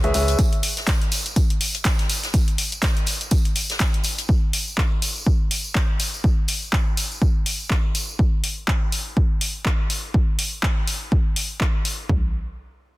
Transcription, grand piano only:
0, 0, Header, 1, 2, 480
1, 0, Start_track
1, 0, Key_signature, 4, "minor"
1, 0, Tempo, 487805
1, 381, Time_signature, 4, 2, 24, 8
1, 12768, End_track
2, 0, Start_track
2, 0, Title_t, "Grand piano"
2, 0, Program_c, 0, 0
2, 38, Note_on_c, 0, 68, 96
2, 38, Note_on_c, 0, 71, 85
2, 38, Note_on_c, 0, 73, 86
2, 38, Note_on_c, 0, 76, 107
2, 116, Note_off_c, 0, 68, 0
2, 116, Note_off_c, 0, 71, 0
2, 116, Note_off_c, 0, 73, 0
2, 116, Note_off_c, 0, 76, 0
2, 141, Note_on_c, 0, 68, 76
2, 141, Note_on_c, 0, 71, 68
2, 141, Note_on_c, 0, 73, 69
2, 141, Note_on_c, 0, 76, 84
2, 369, Note_off_c, 0, 68, 0
2, 369, Note_off_c, 0, 71, 0
2, 369, Note_off_c, 0, 73, 0
2, 369, Note_off_c, 0, 76, 0
2, 12768, End_track
0, 0, End_of_file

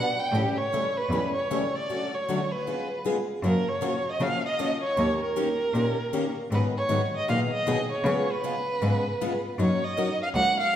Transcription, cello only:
0, 0, Header, 1, 2, 480
1, 0, Start_track
1, 0, Tempo, 385356
1, 417, Time_signature, 4, 2, 24, 8
1, 13399, End_track
2, 0, Start_track
2, 0, Title_t, "Cello"
2, 0, Program_c, 0, 42
2, 393, Note_on_c, 0, 45, 93
2, 493, Note_off_c, 0, 45, 0
2, 1361, Note_on_c, 0, 40, 81
2, 1460, Note_off_c, 0, 40, 0
2, 4268, Note_on_c, 0, 42, 97
2, 4367, Note_off_c, 0, 42, 0
2, 5234, Note_on_c, 0, 49, 81
2, 5334, Note_off_c, 0, 49, 0
2, 6193, Note_on_c, 0, 39, 91
2, 6293, Note_off_c, 0, 39, 0
2, 7143, Note_on_c, 0, 46, 93
2, 7243, Note_off_c, 0, 46, 0
2, 8106, Note_on_c, 0, 44, 88
2, 8205, Note_off_c, 0, 44, 0
2, 8579, Note_on_c, 0, 44, 80
2, 8679, Note_off_c, 0, 44, 0
2, 9074, Note_on_c, 0, 46, 91
2, 9173, Note_off_c, 0, 46, 0
2, 9553, Note_on_c, 0, 47, 70
2, 9653, Note_off_c, 0, 47, 0
2, 10014, Note_on_c, 0, 49, 100
2, 10114, Note_off_c, 0, 49, 0
2, 10983, Note_on_c, 0, 44, 89
2, 11083, Note_off_c, 0, 44, 0
2, 11938, Note_on_c, 0, 42, 90
2, 12038, Note_off_c, 0, 42, 0
2, 12886, Note_on_c, 0, 37, 86
2, 12986, Note_off_c, 0, 37, 0
2, 13399, End_track
0, 0, End_of_file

